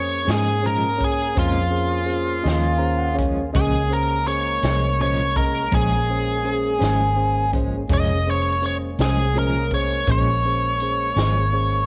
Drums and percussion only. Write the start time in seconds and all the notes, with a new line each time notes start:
0.28 snare, closed hi-hat
1.01 kick, closed hi-hat
1.37 kick, closed hi-hat
2.10 closed hi-hat
2.46 snare, closed hi-hat
3.18 kick, closed hi-hat
3.55 kick, closed hi-hat
4.28 closed hi-hat
4.63 snare, closed hi-hat
5.36 kick, closed hi-hat
5.72 kick, closed hi-hat
6.45 closed hi-hat
6.82 snare, closed hi-hat
7.53 kick, closed hi-hat
7.89 kick, closed hi-hat
8.62 closed hi-hat
8.98 snare, closed hi-hat
9.71 kick, closed hi-hat
10.07 kick, closed hi-hat
10.80 closed hi-hat
11.16 snare, closed hi-hat